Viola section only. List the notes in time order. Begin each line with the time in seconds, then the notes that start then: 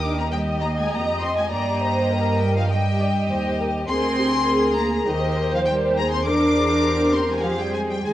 Already playing: A#4
0.33 D#5
1.52 D5
1.82 C5
2.11 A#4
2.70 D#5
3.00 D5
3.31 C5
3.60 A#4
3.89 G#4
4.18 G4
4.49 G#4
5.08 C5
6.27 A#4
6.56 G#4
6.86 G4
8.04 G#4